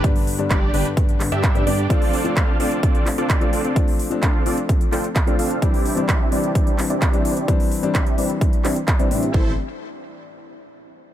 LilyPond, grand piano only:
\new Staff \with { instrumentName = "Grand piano" } { \time 4/4 \key a \minor \tempo 4 = 129 <g, d g b d'>8. <g, d g b d'>16 r8 <g, d g b d'>4 <g, d g b d'>16 r8 <g, d g b d'>16 <d g b d'>16 r16 | <f a c' d'>8. <f a c' d'>16 r8 <f a c' d'>4 <f a c' d'>16 r8 <f a c' d'>8 r16 | <f a c' d'>8. <f a c' d'>16 r8 <f a c' d'>4 <f a c' d'>16 r8 <f a c' d'>8 r16 | <e g c' d'>8. <e g c' d'>16 r8 <e g c' d'>4 <e g c' d'>16 r8 <e g c' d'>8 r16 |
<e g c' d'>8. <e g c' d'>16 r8 <e g c' d'>4 <e g c' d'>16 r8 <e g c' d'>16 <a, e g c' d'>16 r16 | <e a c' e'>8 r2. r8 | }